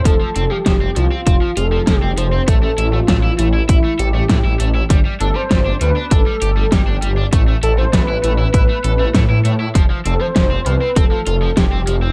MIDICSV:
0, 0, Header, 1, 5, 480
1, 0, Start_track
1, 0, Key_signature, 0, "minor"
1, 0, Tempo, 606061
1, 43, Time_signature, 4, 2, 24, 8
1, 9602, End_track
2, 0, Start_track
2, 0, Title_t, "Analog synth lead"
2, 0, Program_c, 0, 81
2, 42, Note_on_c, 0, 69, 101
2, 404, Note_on_c, 0, 67, 106
2, 415, Note_off_c, 0, 69, 0
2, 764, Note_on_c, 0, 65, 92
2, 776, Note_off_c, 0, 67, 0
2, 1000, Note_off_c, 0, 65, 0
2, 1005, Note_on_c, 0, 65, 95
2, 1227, Note_off_c, 0, 65, 0
2, 1242, Note_on_c, 0, 69, 105
2, 1590, Note_off_c, 0, 69, 0
2, 1590, Note_on_c, 0, 67, 105
2, 1721, Note_on_c, 0, 72, 102
2, 1733, Note_off_c, 0, 67, 0
2, 1962, Note_on_c, 0, 69, 100
2, 1974, Note_off_c, 0, 72, 0
2, 2324, Note_on_c, 0, 65, 99
2, 2336, Note_off_c, 0, 69, 0
2, 2682, Note_on_c, 0, 64, 85
2, 2693, Note_off_c, 0, 65, 0
2, 2917, Note_off_c, 0, 64, 0
2, 2922, Note_on_c, 0, 64, 89
2, 3162, Note_on_c, 0, 67, 89
2, 3173, Note_off_c, 0, 64, 0
2, 3642, Note_off_c, 0, 67, 0
2, 4123, Note_on_c, 0, 69, 102
2, 4242, Note_on_c, 0, 72, 114
2, 4254, Note_off_c, 0, 69, 0
2, 4599, Note_off_c, 0, 72, 0
2, 4604, Note_on_c, 0, 71, 99
2, 4845, Note_on_c, 0, 69, 96
2, 4856, Note_off_c, 0, 71, 0
2, 5325, Note_on_c, 0, 67, 83
2, 5337, Note_off_c, 0, 69, 0
2, 5684, Note_off_c, 0, 67, 0
2, 6045, Note_on_c, 0, 69, 95
2, 6156, Note_off_c, 0, 69, 0
2, 6163, Note_on_c, 0, 72, 109
2, 6283, Note_on_c, 0, 71, 110
2, 6294, Note_off_c, 0, 72, 0
2, 6757, Note_off_c, 0, 71, 0
2, 6762, Note_on_c, 0, 71, 93
2, 7451, Note_off_c, 0, 71, 0
2, 7965, Note_on_c, 0, 69, 100
2, 8084, Note_on_c, 0, 72, 115
2, 8096, Note_off_c, 0, 69, 0
2, 8443, Note_on_c, 0, 71, 102
2, 8455, Note_off_c, 0, 72, 0
2, 8682, Note_on_c, 0, 69, 103
2, 8694, Note_off_c, 0, 71, 0
2, 9158, Note_off_c, 0, 69, 0
2, 9163, Note_on_c, 0, 67, 78
2, 9497, Note_off_c, 0, 67, 0
2, 9602, End_track
3, 0, Start_track
3, 0, Title_t, "Overdriven electric guitar"
3, 0, Program_c, 1, 29
3, 44, Note_on_c, 1, 53, 97
3, 103, Note_off_c, 1, 53, 0
3, 164, Note_on_c, 1, 53, 68
3, 223, Note_off_c, 1, 53, 0
3, 283, Note_on_c, 1, 60, 70
3, 343, Note_off_c, 1, 60, 0
3, 404, Note_on_c, 1, 53, 98
3, 439, Note_off_c, 1, 53, 0
3, 524, Note_on_c, 1, 53, 91
3, 583, Note_off_c, 1, 53, 0
3, 643, Note_on_c, 1, 60, 95
3, 703, Note_off_c, 1, 60, 0
3, 764, Note_on_c, 1, 53, 71
3, 823, Note_off_c, 1, 53, 0
3, 883, Note_on_c, 1, 60, 98
3, 943, Note_off_c, 1, 60, 0
3, 1003, Note_on_c, 1, 60, 91
3, 1063, Note_off_c, 1, 60, 0
3, 1123, Note_on_c, 1, 53, 71
3, 1183, Note_off_c, 1, 53, 0
3, 1243, Note_on_c, 1, 65, 73
3, 1303, Note_off_c, 1, 65, 0
3, 1363, Note_on_c, 1, 53, 96
3, 1423, Note_off_c, 1, 53, 0
3, 1483, Note_on_c, 1, 53, 99
3, 1543, Note_off_c, 1, 53, 0
3, 1602, Note_on_c, 1, 60, 91
3, 1663, Note_off_c, 1, 60, 0
3, 1723, Note_on_c, 1, 53, 73
3, 1783, Note_off_c, 1, 53, 0
3, 1842, Note_on_c, 1, 60, 95
3, 1902, Note_off_c, 1, 60, 0
3, 1962, Note_on_c, 1, 57, 97
3, 2022, Note_off_c, 1, 57, 0
3, 2082, Note_on_c, 1, 57, 73
3, 2143, Note_off_c, 1, 57, 0
3, 2203, Note_on_c, 1, 64, 71
3, 2263, Note_off_c, 1, 64, 0
3, 2322, Note_on_c, 1, 57, 98
3, 2358, Note_off_c, 1, 57, 0
3, 2442, Note_on_c, 1, 57, 95
3, 2502, Note_off_c, 1, 57, 0
3, 2561, Note_on_c, 1, 64, 99
3, 2622, Note_off_c, 1, 64, 0
3, 2681, Note_on_c, 1, 57, 71
3, 2742, Note_off_c, 1, 57, 0
3, 2802, Note_on_c, 1, 64, 91
3, 2862, Note_off_c, 1, 64, 0
3, 2921, Note_on_c, 1, 64, 97
3, 2982, Note_off_c, 1, 64, 0
3, 3041, Note_on_c, 1, 57, 69
3, 3102, Note_off_c, 1, 57, 0
3, 3161, Note_on_c, 1, 69, 77
3, 3222, Note_off_c, 1, 69, 0
3, 3282, Note_on_c, 1, 57, 97
3, 3342, Note_off_c, 1, 57, 0
3, 3401, Note_on_c, 1, 57, 99
3, 3462, Note_off_c, 1, 57, 0
3, 3521, Note_on_c, 1, 64, 99
3, 3582, Note_off_c, 1, 64, 0
3, 3641, Note_on_c, 1, 57, 73
3, 3702, Note_off_c, 1, 57, 0
3, 3762, Note_on_c, 1, 64, 96
3, 3822, Note_off_c, 1, 64, 0
3, 3881, Note_on_c, 1, 55, 94
3, 3942, Note_off_c, 1, 55, 0
3, 4001, Note_on_c, 1, 55, 75
3, 4062, Note_off_c, 1, 55, 0
3, 4120, Note_on_c, 1, 62, 71
3, 4181, Note_off_c, 1, 62, 0
3, 4240, Note_on_c, 1, 55, 98
3, 4277, Note_off_c, 1, 55, 0
3, 4360, Note_on_c, 1, 55, 97
3, 4421, Note_off_c, 1, 55, 0
3, 4481, Note_on_c, 1, 62, 93
3, 4542, Note_off_c, 1, 62, 0
3, 4602, Note_on_c, 1, 55, 71
3, 4662, Note_off_c, 1, 55, 0
3, 4722, Note_on_c, 1, 62, 99
3, 4782, Note_off_c, 1, 62, 0
3, 4842, Note_on_c, 1, 62, 96
3, 4902, Note_off_c, 1, 62, 0
3, 4962, Note_on_c, 1, 55, 69
3, 5022, Note_off_c, 1, 55, 0
3, 5081, Note_on_c, 1, 67, 75
3, 5142, Note_off_c, 1, 67, 0
3, 5201, Note_on_c, 1, 55, 99
3, 5262, Note_off_c, 1, 55, 0
3, 5321, Note_on_c, 1, 55, 98
3, 5382, Note_off_c, 1, 55, 0
3, 5441, Note_on_c, 1, 62, 98
3, 5502, Note_off_c, 1, 62, 0
3, 5561, Note_on_c, 1, 55, 77
3, 5622, Note_off_c, 1, 55, 0
3, 5682, Note_on_c, 1, 62, 97
3, 5742, Note_off_c, 1, 62, 0
3, 5802, Note_on_c, 1, 57, 94
3, 5863, Note_off_c, 1, 57, 0
3, 5922, Note_on_c, 1, 57, 75
3, 5982, Note_off_c, 1, 57, 0
3, 6043, Note_on_c, 1, 64, 73
3, 6103, Note_off_c, 1, 64, 0
3, 6163, Note_on_c, 1, 57, 95
3, 6199, Note_off_c, 1, 57, 0
3, 6282, Note_on_c, 1, 57, 95
3, 6343, Note_off_c, 1, 57, 0
3, 6403, Note_on_c, 1, 64, 93
3, 6463, Note_off_c, 1, 64, 0
3, 6523, Note_on_c, 1, 57, 72
3, 6583, Note_off_c, 1, 57, 0
3, 6642, Note_on_c, 1, 64, 94
3, 6702, Note_off_c, 1, 64, 0
3, 6761, Note_on_c, 1, 64, 93
3, 6822, Note_off_c, 1, 64, 0
3, 6882, Note_on_c, 1, 57, 72
3, 6943, Note_off_c, 1, 57, 0
3, 7002, Note_on_c, 1, 69, 75
3, 7062, Note_off_c, 1, 69, 0
3, 7122, Note_on_c, 1, 57, 100
3, 7182, Note_off_c, 1, 57, 0
3, 7242, Note_on_c, 1, 57, 98
3, 7302, Note_off_c, 1, 57, 0
3, 7363, Note_on_c, 1, 64, 96
3, 7423, Note_off_c, 1, 64, 0
3, 7483, Note_on_c, 1, 57, 71
3, 7543, Note_off_c, 1, 57, 0
3, 7603, Note_on_c, 1, 64, 98
3, 7663, Note_off_c, 1, 64, 0
3, 7723, Note_on_c, 1, 53, 97
3, 7783, Note_off_c, 1, 53, 0
3, 7843, Note_on_c, 1, 53, 70
3, 7903, Note_off_c, 1, 53, 0
3, 7963, Note_on_c, 1, 60, 73
3, 8023, Note_off_c, 1, 60, 0
3, 8084, Note_on_c, 1, 53, 103
3, 8119, Note_off_c, 1, 53, 0
3, 8203, Note_on_c, 1, 53, 96
3, 8263, Note_off_c, 1, 53, 0
3, 8323, Note_on_c, 1, 60, 94
3, 8383, Note_off_c, 1, 60, 0
3, 8445, Note_on_c, 1, 53, 74
3, 8504, Note_off_c, 1, 53, 0
3, 8565, Note_on_c, 1, 60, 96
3, 8624, Note_off_c, 1, 60, 0
3, 8684, Note_on_c, 1, 60, 98
3, 8743, Note_off_c, 1, 60, 0
3, 8803, Note_on_c, 1, 53, 70
3, 8863, Note_off_c, 1, 53, 0
3, 8924, Note_on_c, 1, 65, 74
3, 8983, Note_off_c, 1, 65, 0
3, 9043, Note_on_c, 1, 53, 95
3, 9103, Note_off_c, 1, 53, 0
3, 9162, Note_on_c, 1, 53, 98
3, 9222, Note_off_c, 1, 53, 0
3, 9283, Note_on_c, 1, 60, 95
3, 9343, Note_off_c, 1, 60, 0
3, 9404, Note_on_c, 1, 53, 69
3, 9463, Note_off_c, 1, 53, 0
3, 9524, Note_on_c, 1, 60, 95
3, 9583, Note_off_c, 1, 60, 0
3, 9602, End_track
4, 0, Start_track
4, 0, Title_t, "Detuned saw bass"
4, 0, Program_c, 2, 39
4, 42, Note_on_c, 2, 29, 91
4, 130, Note_off_c, 2, 29, 0
4, 283, Note_on_c, 2, 29, 83
4, 371, Note_off_c, 2, 29, 0
4, 522, Note_on_c, 2, 29, 94
4, 699, Note_off_c, 2, 29, 0
4, 763, Note_on_c, 2, 36, 95
4, 851, Note_off_c, 2, 36, 0
4, 1003, Note_on_c, 2, 29, 79
4, 1091, Note_off_c, 2, 29, 0
4, 1242, Note_on_c, 2, 29, 88
4, 1419, Note_off_c, 2, 29, 0
4, 1482, Note_on_c, 2, 29, 94
4, 1571, Note_off_c, 2, 29, 0
4, 1603, Note_on_c, 2, 29, 101
4, 1691, Note_off_c, 2, 29, 0
4, 1722, Note_on_c, 2, 29, 85
4, 1898, Note_off_c, 2, 29, 0
4, 1963, Note_on_c, 2, 33, 98
4, 2139, Note_off_c, 2, 33, 0
4, 2201, Note_on_c, 2, 33, 79
4, 2378, Note_off_c, 2, 33, 0
4, 2442, Note_on_c, 2, 33, 92
4, 2619, Note_off_c, 2, 33, 0
4, 2682, Note_on_c, 2, 33, 94
4, 2858, Note_off_c, 2, 33, 0
4, 2922, Note_on_c, 2, 33, 78
4, 3011, Note_off_c, 2, 33, 0
4, 3162, Note_on_c, 2, 33, 86
4, 3338, Note_off_c, 2, 33, 0
4, 3402, Note_on_c, 2, 45, 90
4, 3491, Note_off_c, 2, 45, 0
4, 3521, Note_on_c, 2, 33, 93
4, 3610, Note_off_c, 2, 33, 0
4, 3641, Note_on_c, 2, 33, 97
4, 3818, Note_off_c, 2, 33, 0
4, 3882, Note_on_c, 2, 31, 91
4, 3970, Note_off_c, 2, 31, 0
4, 4121, Note_on_c, 2, 31, 85
4, 4210, Note_off_c, 2, 31, 0
4, 4362, Note_on_c, 2, 31, 97
4, 4538, Note_off_c, 2, 31, 0
4, 4601, Note_on_c, 2, 38, 94
4, 4690, Note_off_c, 2, 38, 0
4, 4842, Note_on_c, 2, 31, 80
4, 4930, Note_off_c, 2, 31, 0
4, 5081, Note_on_c, 2, 31, 93
4, 5258, Note_off_c, 2, 31, 0
4, 5322, Note_on_c, 2, 31, 94
4, 5410, Note_off_c, 2, 31, 0
4, 5441, Note_on_c, 2, 31, 99
4, 5530, Note_off_c, 2, 31, 0
4, 5561, Note_on_c, 2, 31, 83
4, 5738, Note_off_c, 2, 31, 0
4, 5802, Note_on_c, 2, 33, 94
4, 5978, Note_off_c, 2, 33, 0
4, 6042, Note_on_c, 2, 33, 81
4, 6218, Note_off_c, 2, 33, 0
4, 6282, Note_on_c, 2, 33, 92
4, 6459, Note_off_c, 2, 33, 0
4, 6522, Note_on_c, 2, 33, 90
4, 6698, Note_off_c, 2, 33, 0
4, 6762, Note_on_c, 2, 33, 83
4, 6851, Note_off_c, 2, 33, 0
4, 7002, Note_on_c, 2, 33, 84
4, 7179, Note_off_c, 2, 33, 0
4, 7243, Note_on_c, 2, 45, 79
4, 7331, Note_off_c, 2, 45, 0
4, 7362, Note_on_c, 2, 45, 79
4, 7450, Note_off_c, 2, 45, 0
4, 7482, Note_on_c, 2, 45, 78
4, 7658, Note_off_c, 2, 45, 0
4, 7723, Note_on_c, 2, 29, 92
4, 7811, Note_off_c, 2, 29, 0
4, 7962, Note_on_c, 2, 29, 84
4, 8050, Note_off_c, 2, 29, 0
4, 8203, Note_on_c, 2, 29, 97
4, 8379, Note_off_c, 2, 29, 0
4, 8442, Note_on_c, 2, 36, 99
4, 8530, Note_off_c, 2, 36, 0
4, 8683, Note_on_c, 2, 29, 77
4, 8771, Note_off_c, 2, 29, 0
4, 8922, Note_on_c, 2, 29, 92
4, 9099, Note_off_c, 2, 29, 0
4, 9163, Note_on_c, 2, 29, 94
4, 9251, Note_off_c, 2, 29, 0
4, 9281, Note_on_c, 2, 29, 100
4, 9370, Note_off_c, 2, 29, 0
4, 9401, Note_on_c, 2, 29, 83
4, 9578, Note_off_c, 2, 29, 0
4, 9602, End_track
5, 0, Start_track
5, 0, Title_t, "Drums"
5, 42, Note_on_c, 9, 36, 112
5, 43, Note_on_c, 9, 42, 94
5, 122, Note_off_c, 9, 36, 0
5, 122, Note_off_c, 9, 42, 0
5, 282, Note_on_c, 9, 42, 64
5, 361, Note_off_c, 9, 42, 0
5, 523, Note_on_c, 9, 36, 119
5, 523, Note_on_c, 9, 38, 111
5, 523, Note_on_c, 9, 42, 96
5, 602, Note_off_c, 9, 36, 0
5, 602, Note_off_c, 9, 38, 0
5, 602, Note_off_c, 9, 42, 0
5, 763, Note_on_c, 9, 42, 65
5, 842, Note_off_c, 9, 42, 0
5, 1003, Note_on_c, 9, 36, 113
5, 1003, Note_on_c, 9, 42, 95
5, 1082, Note_off_c, 9, 36, 0
5, 1082, Note_off_c, 9, 42, 0
5, 1243, Note_on_c, 9, 42, 66
5, 1322, Note_off_c, 9, 42, 0
5, 1483, Note_on_c, 9, 36, 113
5, 1483, Note_on_c, 9, 38, 110
5, 1483, Note_on_c, 9, 42, 91
5, 1562, Note_off_c, 9, 36, 0
5, 1562, Note_off_c, 9, 38, 0
5, 1562, Note_off_c, 9, 42, 0
5, 1723, Note_on_c, 9, 42, 69
5, 1802, Note_off_c, 9, 42, 0
5, 1963, Note_on_c, 9, 36, 114
5, 1963, Note_on_c, 9, 42, 96
5, 2042, Note_off_c, 9, 36, 0
5, 2042, Note_off_c, 9, 42, 0
5, 2202, Note_on_c, 9, 42, 64
5, 2282, Note_off_c, 9, 42, 0
5, 2442, Note_on_c, 9, 38, 121
5, 2442, Note_on_c, 9, 42, 93
5, 2443, Note_on_c, 9, 36, 118
5, 2521, Note_off_c, 9, 38, 0
5, 2521, Note_off_c, 9, 42, 0
5, 2522, Note_off_c, 9, 36, 0
5, 2682, Note_on_c, 9, 42, 68
5, 2761, Note_off_c, 9, 42, 0
5, 2922, Note_on_c, 9, 36, 121
5, 2922, Note_on_c, 9, 42, 96
5, 3001, Note_off_c, 9, 42, 0
5, 3002, Note_off_c, 9, 36, 0
5, 3162, Note_on_c, 9, 42, 64
5, 3242, Note_off_c, 9, 42, 0
5, 3402, Note_on_c, 9, 36, 117
5, 3402, Note_on_c, 9, 38, 115
5, 3402, Note_on_c, 9, 42, 92
5, 3481, Note_off_c, 9, 38, 0
5, 3481, Note_off_c, 9, 42, 0
5, 3482, Note_off_c, 9, 36, 0
5, 3642, Note_on_c, 9, 42, 68
5, 3721, Note_off_c, 9, 42, 0
5, 3882, Note_on_c, 9, 36, 116
5, 3882, Note_on_c, 9, 42, 94
5, 3961, Note_off_c, 9, 36, 0
5, 3961, Note_off_c, 9, 42, 0
5, 4123, Note_on_c, 9, 42, 61
5, 4202, Note_off_c, 9, 42, 0
5, 4362, Note_on_c, 9, 36, 127
5, 4362, Note_on_c, 9, 38, 120
5, 4362, Note_on_c, 9, 42, 91
5, 4441, Note_off_c, 9, 36, 0
5, 4441, Note_off_c, 9, 38, 0
5, 4441, Note_off_c, 9, 42, 0
5, 4601, Note_on_c, 9, 42, 66
5, 4680, Note_off_c, 9, 42, 0
5, 4841, Note_on_c, 9, 42, 92
5, 4842, Note_on_c, 9, 36, 124
5, 4920, Note_off_c, 9, 42, 0
5, 4921, Note_off_c, 9, 36, 0
5, 5082, Note_on_c, 9, 42, 68
5, 5161, Note_off_c, 9, 42, 0
5, 5322, Note_on_c, 9, 36, 124
5, 5322, Note_on_c, 9, 38, 114
5, 5322, Note_on_c, 9, 42, 91
5, 5402, Note_off_c, 9, 36, 0
5, 5402, Note_off_c, 9, 38, 0
5, 5402, Note_off_c, 9, 42, 0
5, 5562, Note_on_c, 9, 42, 65
5, 5642, Note_off_c, 9, 42, 0
5, 5802, Note_on_c, 9, 42, 91
5, 5803, Note_on_c, 9, 36, 119
5, 5882, Note_off_c, 9, 36, 0
5, 5882, Note_off_c, 9, 42, 0
5, 6043, Note_on_c, 9, 42, 60
5, 6122, Note_off_c, 9, 42, 0
5, 6283, Note_on_c, 9, 36, 117
5, 6284, Note_on_c, 9, 38, 126
5, 6284, Note_on_c, 9, 42, 88
5, 6362, Note_off_c, 9, 36, 0
5, 6363, Note_off_c, 9, 38, 0
5, 6363, Note_off_c, 9, 42, 0
5, 6523, Note_on_c, 9, 42, 64
5, 6603, Note_off_c, 9, 42, 0
5, 6763, Note_on_c, 9, 36, 122
5, 6763, Note_on_c, 9, 42, 88
5, 6842, Note_off_c, 9, 36, 0
5, 6842, Note_off_c, 9, 42, 0
5, 7003, Note_on_c, 9, 42, 59
5, 7082, Note_off_c, 9, 42, 0
5, 7243, Note_on_c, 9, 36, 119
5, 7243, Note_on_c, 9, 38, 116
5, 7243, Note_on_c, 9, 42, 87
5, 7322, Note_off_c, 9, 36, 0
5, 7322, Note_off_c, 9, 38, 0
5, 7322, Note_off_c, 9, 42, 0
5, 7484, Note_on_c, 9, 42, 63
5, 7563, Note_off_c, 9, 42, 0
5, 7723, Note_on_c, 9, 36, 108
5, 7724, Note_on_c, 9, 42, 90
5, 7802, Note_off_c, 9, 36, 0
5, 7803, Note_off_c, 9, 42, 0
5, 7964, Note_on_c, 9, 42, 60
5, 8043, Note_off_c, 9, 42, 0
5, 8203, Note_on_c, 9, 36, 113
5, 8203, Note_on_c, 9, 38, 119
5, 8203, Note_on_c, 9, 42, 88
5, 8282, Note_off_c, 9, 36, 0
5, 8282, Note_off_c, 9, 38, 0
5, 8282, Note_off_c, 9, 42, 0
5, 8443, Note_on_c, 9, 42, 61
5, 8522, Note_off_c, 9, 42, 0
5, 8683, Note_on_c, 9, 36, 120
5, 8683, Note_on_c, 9, 42, 88
5, 8762, Note_off_c, 9, 42, 0
5, 8763, Note_off_c, 9, 36, 0
5, 8922, Note_on_c, 9, 42, 61
5, 9002, Note_off_c, 9, 42, 0
5, 9163, Note_on_c, 9, 36, 109
5, 9163, Note_on_c, 9, 38, 112
5, 9163, Note_on_c, 9, 42, 86
5, 9242, Note_off_c, 9, 36, 0
5, 9242, Note_off_c, 9, 38, 0
5, 9242, Note_off_c, 9, 42, 0
5, 9403, Note_on_c, 9, 42, 62
5, 9482, Note_off_c, 9, 42, 0
5, 9602, End_track
0, 0, End_of_file